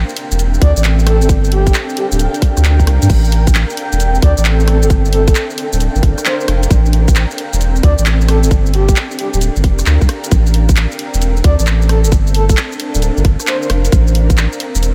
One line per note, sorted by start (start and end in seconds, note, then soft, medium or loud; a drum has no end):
0.00 1.91 C4 medium
0.00 0.13 D4 medium
0.00 1.07 A4 medium
0.00 1.07 E5 medium
0.00 13.92 G5 medium
0.09 shaker soft
0.17 open hi-hat loud
0.31 0.59 E1 loud
0.31 shaker medium
0.39 closed hi-hat medium
0.39 shaker medium
0.54 shaker soft
0.62 0.73 D2 loud
0.62 0.71 D5 medium
0.62 kick loud
0.62 open hi-hat loud
0.76 1.23 A1 loud
0.76 0.81 D5 medium
0.76 shaker medium
0.84 clap loud
0.84 closed hi-hat medium
0.84 shaker medium
0.99 shaker soft
1.07 3.74 D4 medium
1.07 1.16 A4 medium
1.07 cross-stick medium
1.07 open hi-hat loud
1.22 1.72 G1 medium
1.22 1.27 A4 medium
1.22 shaker medium
1.26 3.10 A#4 medium
1.26 3.10 F5 medium
1.26 kick loud
1.26 closed hi-hat medium
1.26 shaker medium
1.44 shaker soft
1.52 1.73 G4 loud
1.52 open hi-hat loud
1.67 kick loud
1.67 open hi-hat medium
1.67 shaker medium
1.74 clap loud
1.74 closed hi-hat medium
1.74 shaker medium
1.89 shaker soft
1.97 2.07 G4 medium
1.97 open hi-hat loud
2.12 2.28 D1 loud
2.12 2.17 G4 medium
2.12 shaker medium
2.19 closed hi-hat medium
2.19 shaker medium
2.34 closed hi-hat soft
2.34 shaker soft
2.42 kick loud
2.42 open hi-hat loud
2.57 2.89 D2 medium
2.57 cross-stick soft
2.57 shaker medium
2.65 clap loud
2.65 closed hi-hat medium
2.65 shaker medium
2.80 kick medium
2.80 shaker soft
2.87 2.99 C2 loud
2.87 cross-stick medium
2.87 open hi-hat loud
3.02 3.08 G2 loud
3.02 closed hi-hat soft
3.02 shaker medium
3.10 3.64 A1 loud
3.10 5.52 C4 loud
3.10 kick loud
3.10 closed hi-hat medium
3.10 crash medium
3.10 shaker soft
3.25 4.68 A4 medium
3.25 shaker soft
3.32 open hi-hat loud
3.47 kick loud
3.47 closed hi-hat medium
3.47 shaker medium
3.55 clap loud
3.55 closed hi-hat medium
3.55 shaker soft
3.70 shaker soft
3.77 open hi-hat loud
3.82 4.68 E5 medium
3.92 4.20 E1 loud
3.92 shaker medium
4.00 closed hi-hat medium
4.00 shaker medium
4.15 shaker soft
4.22 4.34 D2 loud
4.22 4.32 D5 medium
4.22 kick loud
4.22 open hi-hat loud
4.37 4.84 A1 loud
4.37 4.42 D5 medium
4.37 shaker medium
4.45 clap loud
4.45 closed hi-hat medium
4.45 shaker medium
4.60 shaker soft
4.67 7.35 D4 medium
4.67 4.77 A4 medium
4.67 cross-stick medium
4.67 open hi-hat loud
4.80 5.33 G1 loud
4.80 4.87 A4 medium
4.80 6.71 A#4 medium
4.80 shaker medium
4.90 kick loud
4.90 closed hi-hat medium
4.90 shaker medium
5.05 shaker soft
5.11 5.22 A4 loud
5.11 6.71 F5 medium
5.11 open hi-hat loud
5.28 5.33 A4 medium
5.28 kick loud
5.28 open hi-hat medium
5.28 shaker medium
5.35 clap loud
5.35 closed hi-hat medium
5.35 shaker medium
5.50 shaker soft
5.58 open hi-hat loud
5.73 5.89 D1 loud
5.73 shaker medium
5.80 closed hi-hat medium
5.80 shaker soft
5.95 6.01 G1 loud
5.95 shaker soft
6.03 6.15 G1 loud
6.03 kick loud
6.03 open hi-hat loud
6.18 cross-stick soft
6.18 shaker medium
6.25 6.35 C5 medium
6.25 clap loud
6.25 closed hi-hat medium
6.25 shaker soft
6.40 6.45 C5 medium
6.40 shaker soft
6.48 6.67 F1 medium
6.48 cross-stick medium
6.48 open hi-hat loud
6.63 closed hi-hat soft
6.63 shaker medium
6.70 7.25 A1 loud
6.70 9.13 C4 loud
6.70 kick loud
6.70 closed hi-hat medium
6.70 shaker medium
6.86 shaker soft
6.93 open hi-hat loud
7.08 kick loud
7.08 closed hi-hat medium
7.08 shaker medium
7.16 8.28 A4 medium
7.16 clap loud
7.16 closed hi-hat medium
7.16 shaker soft
7.31 shaker soft
7.36 8.28 E5 medium
7.36 open hi-hat loud
7.53 7.81 E1 loud
7.53 shaker medium
7.61 closed hi-hat medium
7.61 shaker medium
7.76 shaker soft
7.83 7.95 D2 loud
7.83 7.93 D5 medium
7.83 kick loud
7.83 open hi-hat loud
7.98 8.45 A1 medium
7.98 8.03 D5 medium
7.98 shaker medium
8.06 clap loud
8.06 closed hi-hat medium
8.06 shaker soft
8.21 shaker soft
8.28 10.96 D4 medium
8.28 8.38 A4 medium
8.28 cross-stick medium
8.28 open hi-hat loud
8.43 8.93 G1 medium
8.43 8.48 A4 medium
8.43 shaker medium
8.51 kick loud
8.51 closed hi-hat medium
8.51 shaker medium
8.66 10.31 A#4 medium
8.66 shaker soft
8.74 8.95 G4 loud
8.74 open hi-hat loud
8.89 kick loud
8.89 open hi-hat medium
8.89 shaker medium
8.95 10.32 F5 medium
8.95 clap loud
8.95 closed hi-hat medium
8.95 shaker medium
9.11 shaker soft
9.19 9.28 G4 medium
9.19 open hi-hat loud
9.34 9.50 D1 loud
9.34 9.39 G4 medium
9.34 shaker medium
9.41 closed hi-hat medium
9.41 shaker medium
9.56 9.65 G1 medium
9.56 shaker soft
9.64 9.83 F1 loud
9.64 kick loud
9.64 open hi-hat loud
9.79 cross-stick soft
9.79 shaker medium
9.86 9.98 D2 loud
9.86 clap loud
9.86 closed hi-hat medium
9.86 shaker medium
10.01 10.07 C2 loud
10.01 kick medium
10.01 shaker soft
10.09 cross-stick medium
10.09 open hi-hat loud
10.24 closed hi-hat soft
10.24 shaker medium
10.31 10.86 A1 loud
10.31 12.74 C4 medium
10.31 kick loud
10.31 closed hi-hat medium
10.31 shaker medium
10.46 shaker soft
10.54 open hi-hat loud
10.61 11.90 A4 medium
10.69 kick loud
10.69 closed hi-hat medium
10.69 shaker medium
10.76 clap loud
10.76 closed hi-hat medium
10.76 shaker medium
10.91 shaker soft
10.99 open hi-hat loud
11.04 11.90 E5 medium
11.14 11.42 E1 loud
11.14 shaker medium
11.22 closed hi-hat medium
11.22 shaker medium
11.37 shaker soft
11.44 11.56 D2 loud
11.44 11.54 D5 medium
11.44 kick loud
11.44 open hi-hat loud
11.59 12.06 A1 loud
11.59 11.64 D5 medium
11.59 shaker medium
11.67 clap loud
11.67 closed hi-hat medium
11.67 shaker medium
11.82 shaker soft
11.89 14.57 D4 medium
11.89 11.99 A4 medium
11.89 cross-stick medium
11.89 open hi-hat loud
12.04 12.54 G1 medium
12.04 12.09 A4 medium
12.04 13.92 A#4 loud
12.04 shaker medium
12.12 kick loud
12.12 closed hi-hat medium
12.12 shaker medium
12.27 shaker soft
12.34 12.44 A4 loud
12.34 open hi-hat loud
12.49 12.54 A4 medium
12.49 13.92 F5 medium
12.49 kick loud
12.49 open hi-hat medium
12.49 shaker medium
12.57 clap loud
12.57 closed hi-hat medium
12.57 shaker medium
12.72 shaker soft
12.80 open hi-hat loud
12.95 13.11 D1 loud
12.95 shaker medium
13.02 closed hi-hat medium
13.02 shaker medium
13.17 13.23 G1 loud
13.17 shaker soft
13.25 13.36 G1 loud
13.25 kick loud
13.25 open hi-hat loud
13.40 cross-stick soft
13.40 shaker medium
13.47 13.57 C5 medium
13.47 clap loud
13.47 closed hi-hat medium
13.47 shaker medium
13.62 13.67 C5 medium
13.62 shaker soft
13.70 13.89 F1 medium
13.70 cross-stick medium
13.70 open hi-hat loud
13.85 closed hi-hat soft
13.85 shaker medium
13.92 14.47 A1 loud
13.92 14.95 C4 medium
13.92 kick loud
13.92 closed hi-hat medium
13.92 shaker medium
14.07 shaker soft
14.15 14.95 A4 medium
14.15 open hi-hat loud
14.30 kick loud
14.30 closed hi-hat medium
14.30 shaker medium
14.38 14.95 E5 medium
14.38 clap loud
14.38 closed hi-hat medium
14.38 shaker medium
14.50 14.95 G5 medium
14.50 shaker soft
14.60 open hi-hat loud
14.75 14.95 E1 loud
14.75 shaker medium
14.83 closed hi-hat medium
14.83 shaker medium